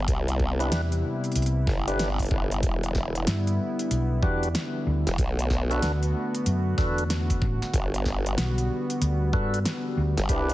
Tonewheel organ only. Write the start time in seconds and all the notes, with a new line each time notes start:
0.60 D4 E4 G4 B4
1.87 D4 E4 G4 B4
4.22 D4 F#4 G4 B4
5.70 D4 F#4 A4 B4
6.78 D4 F#4 A4 B4
9.33 D4 F#4 A4 B4
10.29 D4 E4 G4 B4